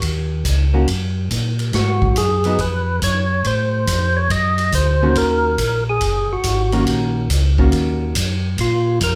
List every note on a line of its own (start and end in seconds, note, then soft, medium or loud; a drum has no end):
0.02 0.44 D#2 medium
0.02 kick soft
0.02 ride medium
0.45 0.86 C#2 medium
0.45 kick soft
0.45 hi-hat pedal medium
0.45 ride medium
0.73 0.86 D#3 medium
0.73 0.87 A#3 medium
0.73 0.87 C#4 medium
0.73 0.87 F#4 medium
0.88 1.29 F#2 medium
0.88 kick soft
0.88 ride medium
1.31 1.72 A#2 medium
1.31 kick soft
1.31 hi-hat pedal medium
1.31 ride medium
1.59 ride soft
1.73 2.15 G#2 medium
1.73 2.18 F#4 medium
1.73 kick soft
1.73 snare soft
1.73 ride medium
2.02 kick medium
2.16 2.58 F#2 medium
2.16 2.61 G#4 medium
2.16 kick soft
2.16 hi-hat pedal medium
2.16 ride medium
2.44 2.58 F#3 medium
2.44 2.58 B3 medium
2.44 2.59 D#4 medium
2.44 ride soft
2.59 3.00 F2 medium
2.59 3.00 B4 medium
2.59 kick soft
2.59 ride medium
3.02 3.43 F#2 medium
3.02 3.47 C#5 medium
3.02 kick soft
3.02 hi-hat pedal medium
3.02 ride medium
3.44 3.86 A2 medium
3.44 4.19 C5 medium
3.44 kick soft
3.44 ride medium
3.87 4.29 F2 loud
3.87 kick soft
3.87 hi-hat pedal medium
3.87 ride medium
4.17 4.31 C#5 loud
4.30 4.72 F#2 medium
4.30 4.75 D#5 loud
4.30 kick soft
4.30 ride medium
4.58 ride soft
4.72 5.14 D2 medium
4.72 5.18 C5 loud
4.72 kick soft
4.72 hi-hat pedal medium
4.72 ride medium
5.02 5.56 D#3 medium
5.02 5.56 A#3 medium
5.02 5.57 C#4 medium
5.02 5.57 F#4 medium
5.15 5.57 D#2 medium
5.15 5.84 A#4 medium
5.15 kick soft
5.15 ride medium
5.58 6.00 A#1 medium
5.58 kick soft
5.58 hi-hat pedal soft
5.58 ride medium
5.89 6.32 G#4 medium
6.01 6.28 F#1 medium
6.01 kick soft
6.01 ride medium
6.29 6.37 F#1 soft
6.29 6.85 F#4 medium
6.43 6.86 G#1 medium
6.43 kick soft
6.43 hi-hat pedal medium
6.43 ride medium
6.72 7.27 D#3 medium
6.72 7.27 A#3 medium
6.72 7.27 C#4 medium
6.72 7.28 F#4 medium
6.72 ride soft
6.87 7.29 A#1 medium
6.87 kick soft
6.87 ride medium
7.30 7.71 C#2 medium
7.30 kick soft
7.30 hi-hat pedal medium
7.30 ride medium
7.58 8.13 D#3 medium
7.58 8.13 A#3 medium
7.58 8.13 C#4 medium
7.58 8.13 F#4 medium
7.58 kick soft
7.72 8.14 D#2 medium
7.72 kick soft
7.72 ride medium
8.15 8.57 F#2 medium
8.15 kick soft
8.15 hi-hat pedal medium
8.15 ride medium
8.58 9.00 A#2 medium
8.58 8.99 F4 medium
8.58 kick soft
8.58 ride medium
9.01 9.15 F2 medium
9.01 9.15 A#4 medium
9.01 kick soft
9.01 hi-hat pedal medium
9.01 ride medium